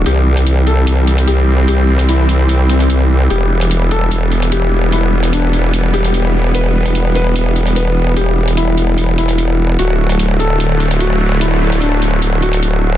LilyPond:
<<
  \new Staff \with { instrumentName = "Felt piano" } { \time 4/4 \key e \minor \tempo 4 = 148 g'4. a'4. g'4 | g'4 e'4. c'4. | g'4. a'4. g'4 | e'4 d'4. g'4. |
b'4. b'4. b'4 | g'4 e'4. e'4. | fis'4. a'4. fis'4 | e'4 d'4. fis'4. | }
  \new Staff \with { instrumentName = "Supersaw synth" } { \clef bass \time 4/4 \key e \minor << { <g c'>1~ | <g c'>1 | <g b>1~ | <g b>1~ |
<g b>1~ | <g b>1 | <fis a>1~ | <fis a>1 | } \\ { e1~ | e1~ | e1~ | e1~ |
e1~ | e1 | d1~ | d1 | } >> }
  \new Staff \with { instrumentName = "Wobble bass" } { \clef bass \time 4/4 \key e \minor c,1~ | c,1 | e,,1~ | e,,1~ |
e,,1~ | e,,1 | d,,1~ | d,,1 | }
  \new DrumStaff \with { instrumentName = "Drums" } \drummode { \time 4/4 hh8. hh16 hh8 hh8 hh8 hh16 hh16 hh4 | hh8. hh16 hh8 hh8 hh8 hh16 hh16 hh4 | hh8. hh16 hh8 hh8 hh8 hh16 hh16 hh4 | hh8. hh16 hh8 hh8 hh8 hh16 hh16 hh4 |
hh8. hh16 hh8 hh8 hh8 hh16 hh16 hh4 | hh8. hh16 hh8 hh8 hh8 hh16 hh16 hh4 | hh8. hh16 hh8 hh8 hh8 hh16 hh16 hh4 | hh8. hh16 hh8 hh8 hh8 hh16 hh16 hh4 | }
>>